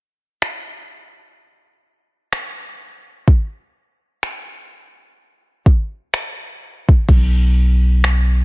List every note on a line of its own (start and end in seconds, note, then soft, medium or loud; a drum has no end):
0.42 finger snap loud
2.33 finger snap loud
3.28 kick loud
4.23 finger snap loud
5.66 kick medium
6.14 finger snap loud
6.89 kick medium
7.09 8.45 B1 loud
7.09 kick loud
7.09 crash medium
8.04 finger snap loud